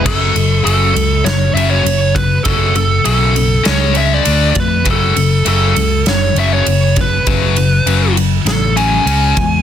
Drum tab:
CC |x-------|--------|--------|--------|
RD |-xxxxxxx|xxxxxxxx|xxxxxxxx|xxxxxxxx|
SD |----o---|----o---|----o---|----o---|
BD |o------o|o------o|o------o|o------o|